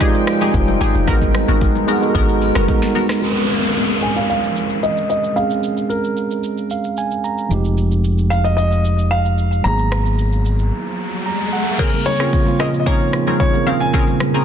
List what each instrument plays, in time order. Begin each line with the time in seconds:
Already playing: ambient pad F3 G#3 C4 D#4 G5, tine electric piano G#3 D#4 F4 G4 A#4 C5 D5
0.00 synth stab D#4 G4 G#4, kick, shaker
0.15 shaker
0.27 cross-stick, open hi-hat, shaker
0.41 synth stab D#4 G4 G#4, high conga, shaker
0.54 log drum bass F1, kick, low conga, shaker
0.68 high conga, shaker
0.81 log drum bass G#1, synth stab D#4 G4 G#4, open hi-hat, low conga, shaker
0.95 log drum bass F1, shaker
1.07 log drum bass G#1, tine electric piano G#3 B3 D#4 F#4 A#4, ambient pad G#3 B3 F#4 A#4, synth stab B3 F#4 A#4, kick, low conga, shaker
1.22 kick, high conga, shaker
1.34 cross-stick, open hi-hat, high conga, shaker
1.48 log drum bass G#1, synth stab B3 F#4 A#4, shaker
1.61 kick, shaker
1.75 high conga, shaker
1.87 tine electric piano G#3 B3 D#4 F#4 G#4, synth stab B3 F#4 A#4, open hi-hat, shaker
2.01 tine electric piano G#3 B3 D#4 F#4 A4, shaker
2.10 tine electric piano A#4
2.15 log drum bass G#1, synth stab B3 F#4 A#4, kick, shaker
2.29 shaker
2.42 open hi-hat, shaker
2.55 log drum bass F#1, synth stab B3 F#4 A#4, cross-stick, high conga, shaker
2.67 tine electric piano G#3 B3 D#4 F#4 A#4, kick, low conga, shaker
2.82 snare, high conga, shaker
2.95 synth stab B3 F#4 A#4, open hi-hat, low conga, shaker
3.09 cross-stick, snare, shaker
3.20 tine electric piano G#3 C4 C#4, downlifter, shaker
3.25 tine electric piano A#4
3.36 shaker
3.49 shaker
3.63 shaker
3.76 shaker
3.89 shaker
4.02 grand piano G#5, shaker
4.16 grand piano F5, shaker
4.29 grand piano F5, shaker
4.43 shaker
4.56 shaker
4.70 shaker
4.83 grand piano D#5, shaker
4.97 shaker
5.10 grand piano D#5, shaker
5.24 shaker
5.34 tine electric piano G#3 C4 C#4, grand piano F5, shaker
5.39 tine electric piano G#4
5.50 shaker
5.63 shaker
5.77 shaker
5.89 grand piano A#4, shaker
6.04 shaker
6.17 shaker
6.31 shaker
6.44 shaker
6.58 shaker
6.70 tine electric piano F5, shaker
6.84 shaker
6.97 tine electric piano G#5, shaker
7.11 shaker
7.24 tine electric piano A#5, shaker
7.38 shaker
7.49 fingered electric bass F1, tine electric piano F3 G#3 D#4, shaker
7.54 tine electric piano G4
7.65 shaker
7.78 shaker
7.91 shaker
8.04 shaker
8.18 shaker
8.30 grand piano F5, shaker
8.44 grand piano D#5, shaker
8.57 grand piano D#5, shaker
8.72 shaker
8.85 shaker
8.98 shaker
9.11 grand piano F5, shaker
9.25 shaker
9.38 shaker
9.52 shaker
9.63 fingered electric bass G#1, tine electric piano F#3 A#3 B3, grand piano A#5, riser, shaker
9.68 tine electric piano G#4
9.79 shaker
9.92 cross-stick, shaker
10.06 shaker
10.19 shaker
10.33 shaker
10.45 shaker
10.59 shaker
11.26 tine electric piano A#5
11.53 tine electric piano F#5
11.78 ambient pad A#2 C#3 F3 G#4 A#4, tine electric piano C#3 A#3 C4 G#4, synth stab C4 C#4 G#4 A#4, grand piano A#4, kick, crash, low conga, shaker
11.93 high conga, shaker
12.06 grand piano C#5, high conga, shaker
12.19 tine electric piano C#3 A#3 C4 F4, synth stab C4 C#4 G#4 A#4, cross-stick, shaker
12.33 kick, shaker
12.46 tine electric piano C#3 A#3 C4 F4, high conga, shaker
12.59 synth stab C4 C#4 G#4 A#4, grand piano D#5, cross-stick, shaker
12.74 shaker
12.80 grand piano D#5
12.86 tine electric piano C#3 A#3 C4 D#4, synth stab A#3 C#4 G#4 A#4, grand piano C#5, kick, shaker
13.00 shaker
13.12 tine electric piano C#3 A#3 C4 F4, cross-stick, shaker
13.27 synth stab C4 C#4 G#4 A#4, high conga, shaker
13.40 grand piano C#5, kick, low conga, shaker
13.53 tine electric piano C#3 A#3 C4 A#4, high conga, shaker
13.67 synth stab C4 C#4 G#4 A#4, grand piano F5, low conga, shaker
13.80 grand piano G#5, shaker
13.93 tine electric piano C#3 A#3 C4 A#4, synth stab C4 C#4 G#4 A#4, kick, low conga, shaker
14.07 high conga, shaker
14.20 cross-stick, high conga, shaker
14.34 tine electric piano C#3 A#3 C4 G#4, synth stab C4 C#4 G#4 A#4, shaker